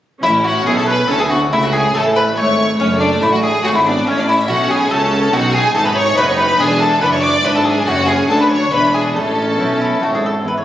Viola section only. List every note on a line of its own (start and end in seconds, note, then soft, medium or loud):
0.23 1.05 C#4 medium
1.09 1.17 C#4 medium
1.30 1.38 B3 medium
1.51 1.94 A3 medium
1.95 2.37 A3 medium
2.38 2.80 A3 medium
2.81 3.64 A3 medium
3.66 3.74 A3 medium
3.86 4.07 B3 medium
4.08 4.49 C#4 medium
4.50 4.90 C#4 medium
4.91 5.33 C#4 medium
5.33 5.74 D#4 medium
5.75 6.16 D#4 medium
6.17 6.58 D#4 medium
6.59 7.00 D4 medium
7.02 7.43 D4 medium
7.44 7.86 D4 medium
7.86 8.29 C#4 medium
8.29 8.71 D4 medium
8.72 9.15 D4 medium
9.16 10.26 C#4 medium